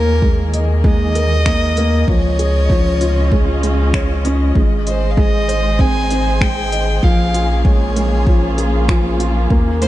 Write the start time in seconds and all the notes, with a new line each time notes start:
Already playing: D#2 D#3 A#3 F4 G#4 A#4 C#5
0.22 G#3, kick
0.50 D#5, closed hi-hat
0.84 G#3 D#5, kick
1.15 A#4, closed hi-hat
1.46 A#3, finger snap, kick
1.77 A#3, closed hi-hat
2.07 C#2 C#3 F3 C#5, kick
2.39 C#4 G#4, closed hi-hat
2.51 F4
2.70 F3, kick
3.01 F4, closed hi-hat
3.32 G#3, kick
3.63 G#3, closed hi-hat
3.93 C#5, finger snap, kick
4.25 C#4, closed hi-hat
4.55 G#1 G#3, kick
4.71 G#4
4.87 C5 D#5, closed hi-hat
5.10 F5
5.17 G#3 D#5, kick
5.48 C5, closed hi-hat
5.79 C4 G#5, kick
6.10 C4, closed hi-hat
6.41 G#3 G5, finger snap, kick
6.72 D#5, closed hi-hat
7.03 A#1 F3 A#3 F5, kick
7.14 C#4 F4
7.34 F4, closed hi-hat
7.65 G#3 C#5, kick
7.96 G#3, closed hi-hat
8.27 F3, kick
8.58 G#4, closed hi-hat
8.89 F3, finger snap, kick
9.20 F4, closed hi-hat
9.50 D#2 D#3 A#3, kick
9.82 A#3 C5, closed hi-hat